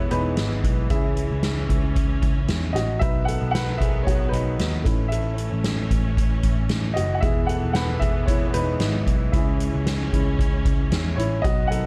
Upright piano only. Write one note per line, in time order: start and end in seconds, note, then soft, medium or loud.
0.00 0.11 G#3 soft
0.00 0.11 B3 soft
0.00 0.11 E4 medium
0.00 0.91 G#4 medium
0.00 0.91 A4 medium
0.00 0.11 B4 medium
0.00 0.92 C#5 medium
0.00 0.91 E5 medium
0.00 0.92 F#5 medium
0.11 0.35 G#3 soft
0.11 0.35 B3 soft
0.11 0.86 D#4 medium
0.11 0.35 E4 soft
0.11 0.93 B4 medium
0.90 2.97 G#3 soft
0.90 2.97 C#4 soft
0.90 2.97 E4 soft
0.90 1.92 G#4 medium
0.90 1.92 E5 medium
2.73 2.99 F#4 medium
2.73 3.01 D#5 medium
2.99 3.37 F#3 soft
2.99 3.37 B3 soft
2.99 3.37 D#4 medium
2.99 3.26 B4 medium
2.99 3.27 E5 medium
3.25 3.52 A4 medium
3.25 3.50 F#5 medium
3.51 3.79 B4 medium
3.51 3.80 F#5 medium
3.77 4.05 G#4 medium
3.77 4.06 E5 medium
4.03 4.31 F#4 medium
4.03 4.32 C#5 medium
4.29 5.08 D#4 medium
4.29 5.06 B4 medium
4.84 6.91 A3 soft
4.84 6.92 C#4 soft
4.84 6.92 E4 medium
5.08 6.13 A4 medium
5.08 6.11 E5 medium
6.94 7.15 F#4 medium
6.94 7.16 D#5 medium
7.14 7.21 F#5 medium
7.20 7.58 G#3 soft
7.20 7.58 B3 soft
7.20 7.59 E4 medium
7.20 7.47 G#4 medium
7.20 7.49 E5 medium
7.46 7.73 A4 medium
7.46 7.72 F#5 medium
7.73 8.00 B4 medium
7.73 7.99 F#5 medium
7.99 8.26 G#4 medium
7.99 8.25 E5 medium
8.26 8.47 E4 medium
8.26 8.45 C#5 medium
8.47 8.54 C#5 medium
8.54 9.30 D#4 medium
8.54 9.35 B4 medium
9.32 10.11 G#3 soft
9.32 10.11 C#4 soft
9.32 10.12 E4 medium
9.32 10.35 G#4 medium
9.32 10.34 E5 medium
10.12 10.36 G#3 soft
10.12 10.36 C#4 soft
10.12 10.37 E4 soft
11.16 11.42 E4 medium
11.16 11.44 C#5 medium
11.42 11.69 F#4 medium
11.42 11.70 D#5 loud
11.67 11.86 F#3 medium
11.67 11.86 B3 soft
11.67 11.86 D#4 medium
11.67 11.86 A4 medium
11.67 11.86 F#5 medium